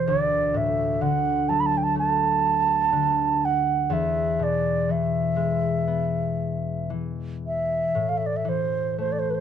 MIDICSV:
0, 0, Header, 1, 3, 480
1, 0, Start_track
1, 0, Tempo, 940439
1, 36, Time_signature, 4, 2, 24, 8
1, 996, Tempo, 975610
1, 2436, Tempo, 1011804
1, 3396, Tempo, 1041667
1, 4549, End_track
2, 0, Start_track
2, 0, Title_t, "Flute"
2, 0, Program_c, 0, 73
2, 34, Note_on_c, 0, 74, 76
2, 291, Note_on_c, 0, 76, 64
2, 298, Note_off_c, 0, 74, 0
2, 519, Note_on_c, 0, 78, 70
2, 527, Note_off_c, 0, 76, 0
2, 760, Note_on_c, 0, 81, 78
2, 768, Note_off_c, 0, 78, 0
2, 817, Note_on_c, 0, 83, 53
2, 825, Note_off_c, 0, 81, 0
2, 847, Note_on_c, 0, 81, 79
2, 855, Note_off_c, 0, 83, 0
2, 906, Note_on_c, 0, 79, 49
2, 913, Note_off_c, 0, 81, 0
2, 935, Note_on_c, 0, 81, 80
2, 943, Note_off_c, 0, 79, 0
2, 1006, Note_off_c, 0, 81, 0
2, 1015, Note_on_c, 0, 81, 87
2, 1734, Note_on_c, 0, 78, 66
2, 1741, Note_off_c, 0, 81, 0
2, 1970, Note_on_c, 0, 76, 61
2, 1977, Note_off_c, 0, 78, 0
2, 2216, Note_on_c, 0, 74, 52
2, 2224, Note_off_c, 0, 76, 0
2, 2452, Note_on_c, 0, 76, 60
2, 2459, Note_off_c, 0, 74, 0
2, 3404, Note_off_c, 0, 76, 0
2, 3657, Note_on_c, 0, 76, 57
2, 3943, Note_on_c, 0, 77, 47
2, 3950, Note_off_c, 0, 76, 0
2, 3982, Note_on_c, 0, 76, 45
2, 3988, Note_off_c, 0, 77, 0
2, 4023, Note_on_c, 0, 74, 54
2, 4030, Note_off_c, 0, 76, 0
2, 4070, Note_on_c, 0, 76, 58
2, 4077, Note_off_c, 0, 74, 0
2, 4127, Note_on_c, 0, 72, 56
2, 4134, Note_off_c, 0, 76, 0
2, 4361, Note_off_c, 0, 72, 0
2, 4363, Note_on_c, 0, 72, 63
2, 4419, Note_on_c, 0, 74, 44
2, 4426, Note_off_c, 0, 72, 0
2, 4451, Note_on_c, 0, 72, 63
2, 4458, Note_off_c, 0, 74, 0
2, 4502, Note_on_c, 0, 71, 43
2, 4509, Note_off_c, 0, 72, 0
2, 4522, Note_on_c, 0, 72, 60
2, 4529, Note_off_c, 0, 71, 0
2, 4549, Note_off_c, 0, 72, 0
2, 4549, End_track
3, 0, Start_track
3, 0, Title_t, "Harp"
3, 0, Program_c, 1, 46
3, 0, Note_on_c, 1, 40, 51
3, 0, Note_on_c, 1, 47, 34
3, 0, Note_on_c, 1, 52, 42
3, 0, Note_on_c, 1, 57, 43
3, 38, Note_on_c, 1, 38, 52
3, 61, Note_off_c, 1, 40, 0
3, 61, Note_off_c, 1, 47, 0
3, 61, Note_off_c, 1, 52, 0
3, 276, Note_on_c, 1, 45, 44
3, 516, Note_on_c, 1, 50, 43
3, 538, Note_off_c, 1, 45, 0
3, 538, Note_off_c, 1, 57, 0
3, 761, Note_on_c, 1, 54, 39
3, 999, Note_on_c, 1, 57, 39
3, 1468, Note_off_c, 1, 50, 0
3, 1474, Note_on_c, 1, 50, 36
3, 1499, Note_off_c, 1, 54, 0
3, 1953, Note_on_c, 1, 40, 48
3, 1979, Note_off_c, 1, 38, 0
3, 1979, Note_off_c, 1, 50, 0
3, 2196, Note_on_c, 1, 47, 35
3, 2441, Note_on_c, 1, 52, 33
3, 2629, Note_off_c, 1, 57, 0
3, 2665, Note_on_c, 1, 56, 34
3, 2908, Note_on_c, 1, 59, 37
3, 3389, Note_off_c, 1, 52, 0
3, 3395, Note_on_c, 1, 52, 35
3, 3808, Note_off_c, 1, 40, 0
3, 3878, Note_on_c, 1, 45, 44
3, 3899, Note_off_c, 1, 47, 0
3, 3899, Note_off_c, 1, 52, 0
3, 3899, Note_off_c, 1, 56, 0
3, 4108, Note_on_c, 1, 52, 35
3, 4353, Note_off_c, 1, 59, 0
3, 4355, Note_on_c, 1, 57, 35
3, 4549, Note_off_c, 1, 45, 0
3, 4549, Note_off_c, 1, 52, 0
3, 4549, Note_off_c, 1, 57, 0
3, 4549, End_track
0, 0, End_of_file